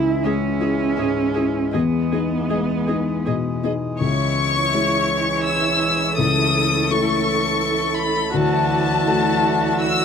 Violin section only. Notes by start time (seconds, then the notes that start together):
0.24 E5
0.61 E5
0.97 E5
1.35 E5
1.73 D#5
2.12 D#5
2.50 D#5
2.88 D#5
3.26 D#5
3.64 D#5
4.00 C#6
5.45 E6
6.17 D#6
6.90 C#6
7.98 B5
8.34 A5
9.80 E6